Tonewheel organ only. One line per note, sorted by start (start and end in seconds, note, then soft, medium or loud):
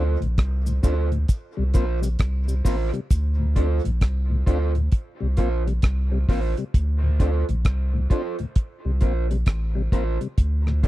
0.20 0.27 D2 medium
0.20 0.27 A2 medium
0.66 0.73 D2 medium
0.66 0.73 A2 medium
0.83 0.94 C4 medium
0.83 0.94 D4 medium
0.83 0.95 F4 medium
1.12 1.19 D2 medium
1.12 1.19 A2 medium
1.57 1.64 C3 medium
1.57 1.64 G3 medium
1.74 1.85 A#3 medium
1.74 1.85 C4 medium
1.74 1.86 F4 medium
2.02 2.09 C3 medium
2.02 2.09 G3 medium
2.48 2.55 C3 medium
2.48 2.55 G3 medium
2.65 2.76 A#3 medium
2.65 2.76 C4 medium
2.65 2.76 F4 medium
2.93 3.00 C3 medium
2.93 3.00 G3 medium
3.39 3.46 D2 medium
3.39 3.46 A2 medium
3.55 3.67 C4 medium
3.55 3.67 D4 medium
3.55 3.67 F4 medium
3.84 3.91 D2 medium
3.84 3.91 A2 medium
4.30 4.37 D2 medium
4.30 4.37 A2 medium
4.47 4.58 C4 medium
4.47 4.58 D4 medium
4.47 4.58 F4 medium
4.75 4.82 D2 medium
4.75 4.82 A2 medium
5.20 5.27 C3 medium
5.20 5.27 G3 medium
5.38 5.49 A#3 medium
5.38 5.49 C4 medium
5.38 5.49 F4 medium
5.66 5.73 C3 medium
5.66 5.73 G3 medium
6.12 6.19 C3 medium
6.12 6.19 G3 medium
6.29 6.40 A#3 medium
6.29 6.40 C4 medium
6.29 6.40 F4 medium
6.58 6.64 C3 medium
6.58 6.64 G3 medium
7.03 7.10 D2 medium
7.03 7.10 A2 medium
7.20 7.31 C4 medium
7.20 7.31 D4 medium
7.20 7.31 F4 medium
7.49 7.55 D2 medium
7.49 7.55 A2 medium
7.94 8.00 D2 medium
7.94 8.00 A2 medium
8.11 8.22 C4 medium
8.11 8.22 D4 medium
8.11 8.22 F4 medium
8.39 8.46 D2 medium
8.39 8.46 A2 medium
8.85 8.92 C3 medium
8.85 8.91 G3 medium
9.02 9.13 A#3 medium
9.02 9.13 C4 medium
9.02 9.13 F4 medium
9.31 9.37 C3 medium
9.31 9.37 G3 medium
9.75 9.82 C3 medium
9.75 9.82 G3 medium
9.92 10.04 A#3 medium
9.92 10.04 C4 medium
9.92 10.04 F4 medium
10.21 10.28 C3 medium
10.21 10.28 G3 medium
10.67 10.73 D2 medium
10.67 10.73 A2 medium
10.84 10.88 C4 medium
10.84 10.88 D4 medium
10.84 10.88 F4 medium